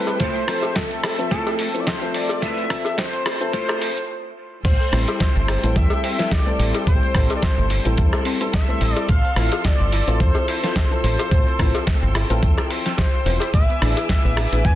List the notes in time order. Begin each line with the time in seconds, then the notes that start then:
Already playing: G3 A3 C4 E4 A4 B4 G5 C6
0.07 muted clean electric guitar stroke, closed hi-hat, cowbell, shaker
0.20 A3 E4 F4 A4 C5 E5, kick, closed hi-hat, shaker
0.35 closed hi-hat, shaker
0.47 F3 C4 A4 E5, cross-stick, open hi-hat
0.63 muted clean electric guitar stroke, closed hi-hat, cowbell, shaker
0.75 A4, kick, snare, closed hi-hat, shaker
0.91 closed hi-hat, shaker
1.03 muted clean electric guitar stroke, cross-stick, open hi-hat, cowbell
1.18 F3 C4 A4 E5, closed hi-hat, shaker
1.30 A3 E4 F4 A4, kick, closed hi-hat, shaker
1.47 closed hi-hat, cowbell, shaker
1.59 open hi-hat
1.74 F3 C4 E4 A4, closed hi-hat, shaker
1.80 D5
1.86 C5, kick, snare, closed hi-hat, cowbell, shaker
2.01 F3 C4 A4 E5, muted clean electric guitar stroke, closed hi-hat, shaker
2.14 D5, open hi-hat
2.29 muted clean electric guitar stroke, closed hi-hat, cowbell, shaker
2.42 A3 E4 F4 B4 E5, kick, closed hi-hat, shaker
2.58 closed hi-hat, shaker
2.69 F3 C4 A4 E5, kick, cross-stick, open hi-hat
2.85 muted clean electric guitar stroke, closed hi-hat, cowbell, shaker
2.97 C5, muted clean electric guitar stroke, kick, snare, closed hi-hat, shaker
3.13 closed hi-hat, shaker
3.25 muted clean electric guitar stroke, cross-stick, open hi-hat, cowbell
3.40 F3 C4 A4 E5, closed hi-hat, shaker
3.53 A3 E4 F4 A4 C5, kick, closed hi-hat, shaker
3.69 cross-stick, closed hi-hat, cowbell, shaker
3.82 open hi-hat
3.97 closed hi-hat, shaker
4.64 A1 G3 A4 C5 G5 C6 E6, kick, closed hi-hat, crash, shaker
4.80 A3, shaker
4.91 A1 G3 C4 E4 A4, cross-stick, open hi-hat
5.08 E4, closed hi-hat, cowbell, shaker
5.20 G3 C5, kick, snare, closed hi-hat, shaker
5.35 G1 A3, shaker
5.48 C4, cross-stick, open hi-hat, cowbell
5.63 A1 G3 C4 E4 A4, closed hi-hat, shaker
5.76 E2 G3 E5, kick, closed hi-hat, shaker
5.90 A3, cowbell, shaker
6.04 C4, open hi-hat
6.18 G3 C4 E4 A4, snare, closed hi-hat, shaker
6.31 G3 D5, kick, snare, closed hi-hat, cowbell, shaker
6.46 G3 A3 C4 E4 A4, shaker
6.59 A1 C4, open hi-hat
6.74 E4, closed hi-hat, cowbell, shaker
6.87 A1 G3 C5, kick, closed hi-hat, shaker
7.02 A3, shaker
7.14 A1 G3 C4 E4 A4, kick, cross-stick, open hi-hat
7.30 E4, closed hi-hat, cowbell, shaker
7.36 D5
7.42 G3 C5, kick, snare, closed hi-hat, shaker
7.58 G1 A3, shaker
7.70 C4, open hi-hat
7.85 A1 G3 C4 E4 A4, closed hi-hat, shaker
7.98 E2 G3, kick, closed hi-hat, shaker
8.13 A3, cross-stick, cowbell, shaker
8.25 C4, open hi-hat
8.41 G3 C4 E4 A4, closed hi-hat, shaker
8.53 G3 E5, kick, snare, closed hi-hat, cowbell, shaker
8.68 G3 A3 C4 E4 A4, shaker
8.81 A1 C4, open hi-hat
8.95 E4 D5, closed hi-hat, cowbell, shaker
9.09 A1 A3 F5, kick, closed hi-hat, shaker
9.24 C4, shaker
9.36 A1 F3 C4 E4 A4, cross-stick, open hi-hat
9.52 F4, closed hi-hat, cowbell, shaker
9.64 A3 D5, kick, snare, closed hi-hat, shaker
9.80 G1 C4, shaker
9.92 E4, open hi-hat
10.07 A1 F3 C4 E4 F4 A4, closed hi-hat, shaker
10.20 E2 A3 C5, kick, closed hi-hat, shaker
10.35 C4, cowbell, shaker
10.48 E4, open hi-hat
10.62 F3 C4 E4 F4 A4, snare, closed hi-hat, shaker
10.76 A3, kick, snare, closed hi-hat, cowbell, shaker
10.90 F3 C4 E4 A4, shaker
11.04 A1 E4 C5, open hi-hat
11.19 F4, closed hi-hat, cowbell, shaker
11.31 A1 A3 G5, kick, closed hi-hat, shaker
11.47 C4, shaker
11.58 A1 F3 C4 E4 A4, kick, cross-stick, open hi-hat
11.75 F4, closed hi-hat, cowbell, shaker
11.87 A3, kick, snare, closed hi-hat, shaker
12.02 G1 C4, shaker
12.15 E4, cross-stick, open hi-hat, cowbell
12.30 A1 F3 C4 E4 F4 A4, closed hi-hat, shaker
12.43 E2 A3, kick, closed hi-hat, shaker
12.58 C4, cross-stick, cowbell, shaker
12.70 A4, open hi-hat
12.86 C4, snare, closed hi-hat, shaker
12.97 F4 C5, kick, snare, closed hi-hat, cowbell, shaker
13.14 F4, shaker
13.25 E1 F3 C4 E4 F4 C5, open hi-hat
13.40 E4, closed hi-hat, cowbell, shaker
13.53 A1 G#3 B4 E5 G#5 D6, kick, closed hi-hat, shaker
13.69 B3, shaker
13.81 A1 E3 B3 D4 G#4, cross-stick, open hi-hat
13.97 E4, closed hi-hat, cowbell, shaker
14.09 G#3 E5, kick, snare, closed hi-hat, shaker
14.25 A1 B3, shaker
14.37 D4, cross-stick, open hi-hat, cowbell
14.52 A1 E3 B3 D4 E4 G#4, closed hi-hat, shaker
14.65 E2 G#3 G#5, kick, closed hi-hat, shaker